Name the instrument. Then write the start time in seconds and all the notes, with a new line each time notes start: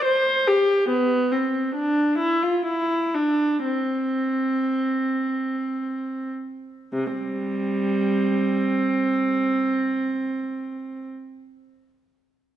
viola
0.05 C5
0.48 G4
0.89 B3
1.32 C4
1.75 D4
2.18 E4
2.43 F4
2.66 E4
3.15 D4
3.64 C4
6.93 C3
7.13 G3 C4